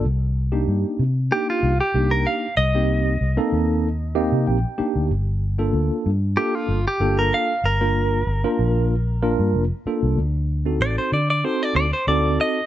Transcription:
<<
  \new Staff \with { instrumentName = "Clean electric guitar" } { \time 4/4 \key g \minor \tempo 4 = 95 r2 g'16 f'8 g'8 bes'16 f''8 | ees''2. r4 | r2 g'16 f'8 g'8 bes'16 f''8 | bes'2. r4 |
r4 d''16 c''16 d''16 d''16 c''16 d''16 d''16 c''16 d''8 ees''8 | }
  \new Staff \with { instrumentName = "Tine electric piano" } { \time 4/4 \key g \minor << { r1 | r2 r8 ees''8 g''4 | r1 | r1 |
r1 | } \\ { r8. <bes d' ees' g'>8. r8 <bes d' ees' g'>8. r16 <bes d' ees' g'>8. r16 | r16 <bes c' ees' g'>8. r16 <bes c' ees' a'>8. r8 <bes c' ees' g'>8. r16 <bes d' ees' g'>8 | r8. <bes d' f' a'>8. r8 <bes d' f' a'>8. r16 <bes d' f' a'>8. r16 | r16 <bes d' f' bes'>8. r16 <bes d' f' bes'>8. r8 <bes d' f' bes'>8. r16 <bes d' f' a'>8 |
r8. <c' ees' fis' a'>8. r8 <c' ees' fis' a'>8. r16 <c' ees' fis' a'>8. r16 | } >> }
  \new Staff \with { instrumentName = "Fingered electric bass" } { \clef bass \time 4/4 \key g \minor c,4 g,16 r16 c8 r8 c,16 r16 c,8 r8 | c,4 c,16 r16 ees,4~ ees,16 c16 bes,,16 r8 d,16 | g,,4 d,16 r16 g,8 r8 g,,16 r16 g,,8 r8 | g,,4 g,,16 r16 bes,,4~ bes,,16 g,16 f,,16 r8 c,16 |
d,4 a,,16 r16 d8 r8 d,16 r16 d,8 r8 | }
>>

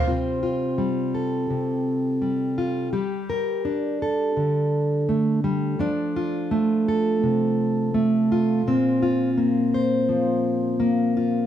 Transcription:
\new Staff \with { instrumentName = "Steel-string acoustic guitar" } { \time 4/4 \key g \dorian \tempo 4 = 84 << { <g c' f' c''>8 f'4 a'2 f'8 | g'8 bes'4 a'2~ a'8 | d'8 f'4 a'2 f'8 | c'8 f'4 c''2 f'8 | } \\ { c4 g4 c4 g4 | g4 d'4 d4 a8 g8 | f4 a4 c4 a4 | bes,4 bes4 f4 bes4 | } >> }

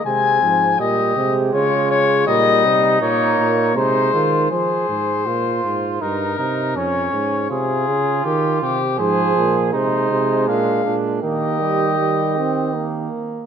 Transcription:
<<
  \new Staff \with { instrumentName = "Cornet" } { \time 3/4 \key aes \major \tempo 4 = 80 aes''4 ees''4 des''8 des''8 | ees''4 des''4 c''4 | c''2 bes'4 | des''4 aes'4 g'8 g'8 |
\key ees \major c''4 c''4 f''8 r8 | ees''2~ ees''8 r8 | }
  \new Staff \with { instrumentName = "Flugelhorn" } { \time 3/4 \key aes \major c'4 g'4 f'4 | ees'2 ees'8 f'8 | aes'4 f'4 ees'8 ees'8 | des'4 f'2 |
\key ees \major aes'4 ees'4 d'8 d'8 | g'2~ g'8 r8 | }
  \new Staff \with { instrumentName = "Trombone" } { \clef bass \time 3/4 \key aes \major aes8 f8 g8 aes4. | g4 bes4 aes4 | r2. | r2. |
\key ees \major f4 aes2 | bes8 g8 g8 c'8 bes4 | }
  \new Staff \with { instrumentName = "Bass trombone" } { \clef bass \time 3/4 \key aes \major c8 aes,8 bes,8 c8 des4 | bes,8 c8 bes,8 bes,8 c8 ees8 | f8 aes,8 bes,8 aes,8 g,8 c8 | f,8 aes,8 c8 des8 ees8 c8 |
\key ees \major aes,8 bes,8 c8 c8 bes,8 bes,8 | ees2~ ees8 r8 | }
>>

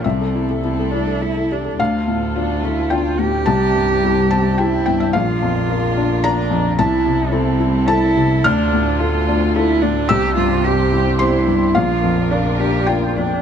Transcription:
<<
  \new Staff \with { instrumentName = "Felt piano" } { \time 3/4 \key d \minor \tempo 4 = 108 << { e''2~ e''8 r8 | f''2 g''4 | a''4. a''8 g''8 g''16 e''16 | f''2 bes''4 |
a''2 a''4 | f'''2. | e'''2 c'''8 r8 | f''2 g''4 | } \\ { c,16 a'16 e'16 a'16 e'16 a'16 e'16 a'16 e'16 a'16 g'16 a'16 | d,8 a,8 <d' f'>8 a8 <d' f'>8 a,8 | c,8 g,8 <e' g'>8 c'8 <e' g'>8 g,8 | bes,,8 f,8 <f' bes'>8 d'8 <f' bes'>8 f,8 |
c,8 c8 <e' a'>8 e'8 <e' a'>8 c8 | d,8 a,8 <f' a'>8 d'8 <f' a'>8 a,8 | c,8 g,8 <g' c''>8 e'8 <g' c''>8 g,8 | bes,,8 f,8 <bes' d''>8 d'8 <bes' d''>8 f,8 | } >> }
  \new Staff \with { instrumentName = "String section" } { \time 3/4 \key d \minor << { a'2. | a'2. | g'2. | bes'2. |
a'2.~ | a'2. | c''2. | bes'2. | } \\ { <a e'>2. | <a f'>2. | <c' e'>2. | <d' f'>2. |
<c' e'>2. | <d' f'>2. | <c' g'>2. | <d' f'>2. | } >> }
  \new Staff \with { instrumentName = "Cello" } { \time 3/4 \key d \minor c'4 c'8 d'8 e'8 d'8 | r4 d'8 e'8 f'8 g'8~ | g'2 e'4 | f'2 d'4 |
e'4 c'4 e'4 | d'4 f'4 e'8 d'8 | g'8 f'8 g'4 e'4 | f'4 d'8 g'8 f'8 d'8 | }
  \new Staff \with { instrumentName = "Double bass" } { \clef bass \time 3/4 \key d \minor c,2. | d,2. | c,2. | bes,,2. |
c,2. | d,2. | c,2. | bes,,2. | }
>>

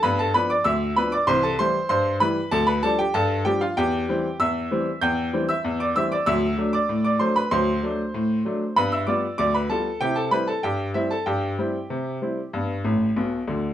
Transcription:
<<
  \new Staff \with { instrumentName = "Grand piano" } { \time 2/4 \key c \major \tempo 4 = 96 <b' b''>16 <a' a''>16 <b' b''>16 <d'' d'''>16 <e'' e'''>8 <b' b''>16 <d'' d'''>16 | <c'' c'''>16 <a' a''>16 <c'' c'''>8 <c'' c'''>8 <b' b''>8 | <a' a''>16 <b' b''>16 <a' a''>16 <g' g''>16 <a' a''>8 <g' g''>16 <f' f''>16 | <g' g''>4 <e'' e'''>4 |
<g'' g'''>8. <e'' e'''>8 <d'' d'''>16 <e'' e'''>16 <d'' d'''>16 | <e'' e'''>8. <d'' d'''>8 <d'' d'''>16 <c'' c'''>16 <b' b''>16 | <c'' c'''>2 | <b' b''>16 <e'' e'''>16 <d'' d'''>8 <d'' d'''>16 <b' b''>16 <a' a''>8 |
<g' g''>16 <a' a''>16 <b' b''>16 <a' a''>16 <g' g''>8 <e' e''>16 <a' a''>16 | <g' g''>2~ | <g' g''>4. r8 | }
  \new Staff \with { instrumentName = "Grand piano" } { \clef bass \time 2/4 \key c \major <g, b>8 <f b d'>8 d,8 <f b d'>8 | <c, e>8 <e g e'>8 g,8 <e g e'>8 | d,8 <f g d'>8 g,8 <f g d'>8 | e,8 <e g c'>8 e,8 <e g c'>8 |
e,8 <e g c'>8 e,8 <e g c'>8 | <d, fis>8 <fis a d'>8 a,8 <fis a d'>8 | <d, fis>8 <fis a d'>8 a,8 <fis a d'>8 | <g, b>8 <g b f'>8 d,8 <g b f'>8 |
<c e'>8 <g c' e'>8 g,8 <g c'>8 | g,8 <g c' e'>8 c8 <g c' e'>8 | <g, b>8 <a,, a,>8 <b,, b,>8 <d, d>8 | }
>>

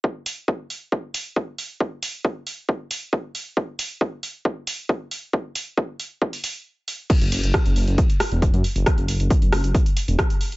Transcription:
<<
  \new Staff \with { instrumentName = "Detuned saw bass" } { \clef bass \time 4/4 \key e \mixolydian \tempo 4 = 136 r1 | r1 | r1 | r1 |
r16 fis,,16 fis,,16 fis,,16 r16 fis,,16 fis,,16 fis,,16 r8. e,,8 fis,16 r16 fis,,16 | r16 fis,,16 fis,,16 fis,,16 r16 fis,,16 fis,,16 fis,,16 r8. e,,16 r4 | }
  \new DrumStaff \with { instrumentName = "Drums" } \drummode { \time 4/4 bd8 hho8 bd8 hho8 bd8 hho8 bd8 hho8 | bd8 hho8 bd8 hho8 bd8 hho8 bd8 hho8 | bd8 hho8 bd8 hho8 bd8 hho8 bd8 hho8 | bd8 hho8 bd8 hho8 bd16 hho16 hho8 r8 hho8 |
<cymc hh bd>16 hh16 hho16 hh16 <hh bd ss>16 hh16 hho16 hh16 <hh bd>16 hh16 <hho ss>16 hh16 <hh bd>16 hh16 hho16 hh16 | <hh bd ss>16 hh16 hho16 hh16 <hh bd>16 hh16 <hho ss>16 hh16 <hh bd>16 hh16 hho16 hh16 <hh bd ss>16 hh16 hho16 hh16 | }
>>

